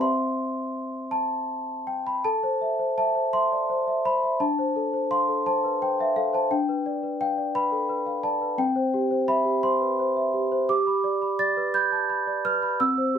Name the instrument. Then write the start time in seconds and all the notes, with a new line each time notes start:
celesta
Already playing: C4 C5
0.00 E5 C6
1.11 A5
1.87 G5
2.07 B5
2.24 A4 A5
2.43 C5
2.61 E5
2.79 C5
2.98 E5 A5
3.15 C5
3.33 E5 C6
3.52 D5
3.70 C5
3.87 E5
4.05 C5 B5
4.23 E5
4.40 D4 A5
4.59 C5
4.76 A4
4.93 C5
5.11 F5 C6
5.28 A4
5.46 C5 A5
5.64 B4
5.82 C5 G5
5.99 E5 F5
6.16 A4 F5
6.33 C5 A5
6.51 D4 G5
6.69 B4
6.86 D5
7.03 B4
7.21 F5 G5
7.38 D5
7.55 B4 B5
7.72 A4
7.89 B4
8.06 F5
8.23 D5 A5
8.42 B4
8.58 C4 G5
8.76 C5
8.94 G4
9.11 C5
9.28 E5 B5
9.45 G4
9.63 C5 C6
9.81 B4
9.99 C5
10.17 E5
10.34 G4
10.52 C5
10.69 G4 D6
10.87 B5
11.04 D5
11.22 B5
11.39 D5 A6
11.57 B4
11.74 B5 G6
11.92 A5
12.10 B5
12.27 D5
12.45 B4 F6
12.62 B5
12.80 C4 E6
12.98 C5
13.15 G4